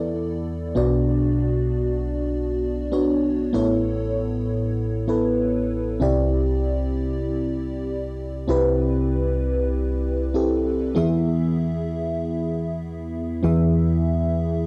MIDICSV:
0, 0, Header, 1, 2, 480
1, 0, Start_track
1, 0, Tempo, 618557
1, 826, Time_signature, 4, 2, 24, 8
1, 11380, End_track
2, 0, Start_track
2, 0, Title_t, "FM electric piano"
2, 0, Program_c, 0, 5
2, 0, Control_c, 0, 64, 127
2, 0, Note_on_c, 0, 40, 62
2, 0, Note_on_c, 0, 52, 61
2, 0, Note_on_c, 0, 59, 50
2, 0, Note_on_c, 0, 64, 46
2, 0, Note_on_c, 0, 69, 46
2, 0, Note_on_c, 0, 74, 54
2, 558, Note_off_c, 0, 40, 0
2, 558, Note_off_c, 0, 52, 0
2, 573, Note_off_c, 0, 59, 0
2, 582, Note_on_c, 0, 59, 66
2, 587, Note_on_c, 0, 62, 65
2, 588, Note_off_c, 0, 64, 0
2, 589, Note_off_c, 0, 69, 0
2, 589, Note_off_c, 0, 74, 0
2, 590, Note_on_c, 0, 35, 65
2, 591, Note_on_c, 0, 47, 65
2, 592, Note_on_c, 0, 66, 63
2, 595, Control_c, 0, 64, 0
2, 598, Note_on_c, 0, 74, 71
2, 733, Control_c, 0, 64, 127
2, 2233, Note_off_c, 0, 59, 0
2, 2235, Note_off_c, 0, 62, 0
2, 2238, Note_off_c, 0, 66, 0
2, 2241, Note_off_c, 0, 74, 0
2, 2263, Note_on_c, 0, 59, 49
2, 2267, Note_on_c, 0, 62, 46
2, 2269, Note_on_c, 0, 66, 43
2, 2274, Note_on_c, 0, 73, 54
2, 2477, Note_off_c, 0, 35, 0
2, 2477, Note_off_c, 0, 47, 0
2, 2728, Note_off_c, 0, 59, 0
2, 2738, Note_on_c, 0, 59, 65
2, 2746, Note_on_c, 0, 64, 61
2, 2747, Note_off_c, 0, 62, 0
2, 2747, Note_off_c, 0, 73, 0
2, 2747, Note_on_c, 0, 45, 64
2, 2748, Note_off_c, 0, 66, 0
2, 2748, Note_on_c, 0, 33, 64
2, 2750, Note_on_c, 0, 69, 62
2, 2755, Control_c, 0, 64, 0
2, 2756, Note_on_c, 0, 73, 70
2, 2902, Control_c, 0, 64, 127
2, 3918, Note_off_c, 0, 59, 0
2, 3922, Note_off_c, 0, 64, 0
2, 3924, Note_off_c, 0, 69, 0
2, 3927, Note_off_c, 0, 73, 0
2, 3941, Note_on_c, 0, 59, 51
2, 3941, Note_on_c, 0, 64, 47
2, 3949, Note_on_c, 0, 69, 47
2, 3952, Note_on_c, 0, 71, 59
2, 4635, Note_off_c, 0, 45, 0
2, 4636, Note_off_c, 0, 33, 0
2, 4655, Note_off_c, 0, 64, 0
2, 4655, Note_on_c, 0, 60, 66
2, 4664, Note_off_c, 0, 59, 0
2, 4664, Note_on_c, 0, 64, 62
2, 4665, Note_on_c, 0, 36, 65
2, 4665, Note_on_c, 0, 48, 64
2, 4667, Note_off_c, 0, 69, 0
2, 4669, Note_off_c, 0, 71, 0
2, 4671, Note_on_c, 0, 67, 65
2, 4674, Note_on_c, 0, 74, 74
2, 4676, Control_c, 0, 64, 0
2, 4811, Control_c, 0, 64, 127
2, 6550, Note_off_c, 0, 60, 0
2, 6554, Note_off_c, 0, 64, 0
2, 6555, Note_off_c, 0, 36, 0
2, 6555, Note_off_c, 0, 48, 0
2, 6557, Note_off_c, 0, 67, 0
2, 6559, Note_off_c, 0, 74, 0
2, 6577, Note_on_c, 0, 60, 68
2, 6585, Note_on_c, 0, 64, 65
2, 6586, Note_on_c, 0, 36, 68
2, 6587, Note_on_c, 0, 48, 70
2, 6589, Note_on_c, 0, 67, 64
2, 6597, Note_on_c, 0, 71, 78
2, 7993, Note_off_c, 0, 60, 0
2, 7997, Note_off_c, 0, 64, 0
2, 7999, Note_off_c, 0, 67, 0
2, 8003, Note_off_c, 0, 71, 0
2, 8025, Note_on_c, 0, 60, 51
2, 8027, Note_on_c, 0, 64, 44
2, 8033, Note_on_c, 0, 67, 45
2, 8036, Note_on_c, 0, 69, 55
2, 8475, Note_off_c, 0, 36, 0
2, 8476, Note_off_c, 0, 48, 0
2, 8492, Note_off_c, 0, 64, 0
2, 8495, Note_on_c, 0, 59, 70
2, 8501, Note_on_c, 0, 64, 62
2, 8505, Note_on_c, 0, 40, 70
2, 8505, Note_on_c, 0, 52, 70
2, 8506, Note_off_c, 0, 60, 0
2, 8508, Note_on_c, 0, 68, 63
2, 8510, Note_off_c, 0, 67, 0
2, 8511, Note_off_c, 0, 69, 0
2, 8516, Control_c, 0, 64, 0
2, 8516, Note_on_c, 0, 76, 75
2, 8642, Control_c, 0, 64, 127
2, 10390, Note_off_c, 0, 59, 0
2, 10393, Note_off_c, 0, 64, 0
2, 10395, Note_off_c, 0, 40, 0
2, 10395, Note_off_c, 0, 52, 0
2, 10396, Note_off_c, 0, 68, 0
2, 10400, Note_off_c, 0, 76, 0
2, 10419, Note_on_c, 0, 59, 68
2, 10425, Note_on_c, 0, 64, 66
2, 10426, Note_on_c, 0, 40, 67
2, 10426, Note_on_c, 0, 52, 71
2, 10429, Note_on_c, 0, 68, 65
2, 10437, Note_on_c, 0, 76, 77
2, 11380, Note_off_c, 0, 40, 0
2, 11380, Note_off_c, 0, 52, 0
2, 11380, Note_off_c, 0, 59, 0
2, 11380, Note_off_c, 0, 64, 0
2, 11380, Note_off_c, 0, 68, 0
2, 11380, Note_off_c, 0, 76, 0
2, 11380, End_track
0, 0, End_of_file